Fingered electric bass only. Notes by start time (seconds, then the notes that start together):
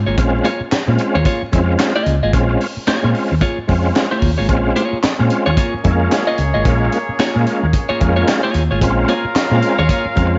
0.07 G#1
0.18 A#1
0.61 muted fingered electric bass stroke
0.72 muted fingered electric bass stroke
0.88 A#2
1.15 D#2
1.43 muted fingered electric bass stroke
1.53 F2
2.06 C#2
2.23 G#1
2.33 A#1
2.77 muted fingered electric bass stroke
2.88 muted fingered electric bass stroke
3.04 A#2
3.32 D#2
3.58 muted fingered electric bass stroke
3.69 F2
4.22 D#2
4.39 G#1
4.49 A#1
4.93 muted fingered electric bass stroke
5.04 muted fingered electric bass stroke
5.20 A#2
5.47 D#2
5.74 muted fingered electric bass stroke
5.85 F2
6.39 C#2
6.55 G#1
6.65 A#1
7.09 muted fingered electric bass stroke
7.19 muted fingered electric bass stroke
7.36 A#2
7.63 D#2
7.90 muted fingered electric bass stroke
8.02 F2
8.55 D#2
8.71 G#1
8.82 A#1
9.25 muted fingered electric bass stroke
9.35 muted fingered electric bass stroke
9.51 A#2
9.79 D#2
10.05 muted fingered electric bass stroke
10.17 F2